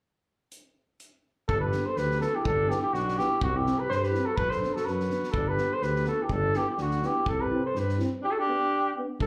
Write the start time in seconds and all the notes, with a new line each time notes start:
0.52 closed hi-hat
1.00 closed hi-hat
1.49 G1 D4 A4, kick
1.60 B4
1.66 G4
1.72 B3 D4, snare
1.86 A4 C5
1.96 D2 G4 B4, snare
2.11 snare
2.20 B3 D4 F#4 A4, snare
2.35 E4 G4
2.45 G1 D4 A4, kick
2.68 B3 D4 E4 G4, snare
2.82 E4 G4
2.93 B1 D4 F#4, snare
3.08 snare
3.16 B3 D4 G4, snare
3.20 E4
3.41 C2 C4 F#4, kick
3.56 E4 G4
3.64 C4 E4, snare
3.79 G4 B4
3.89 G2 G4 B4 C5, snare
3.95 A4 C5
4.02 G4 B4, snare
4.11 E4, snare
4.16 C4
4.26 F#4 A4
4.36 B1 F#4 B4, kick
4.50 A4 C5, snare
4.60 B3 D4, snare
4.74 F#4 A4, snare
4.85 F#2 F#4 B4, snare
5.00 snare
5.09 B3 D4, snare
5.23 snare
5.32 G1 A4, kick
5.36 D4
5.48 G4 B4
5.56 B3 D4, snare
5.73 A4 C5
5.82 D2 G4 B4, snare
5.95 snare
6.04 B3 D4 A4, snare
6.09 F#4
6.21 E4 G4
6.29 G1 D4 A4, kick
6.53 B3 D4 E4 G4, snare
6.69 E4 G4
6.77 D2 D4, snare
6.81 F#4
6.91 snare
7.02 B3 D4 E4, snare
7.06 G4
7.26 C2 E4 A4, kick
7.41 G4 B4
7.50 C4 E4
7.65 A4 C5
7.75 G2 G4 B4, snare
7.89 snare
7.98 C4 E4, snare
8.21 D4 G4
8.28 F#4 A4
8.39 D4 G4
8.46 B3 D4
8.95 B3 D4
9.20 G2 D3 A4, kick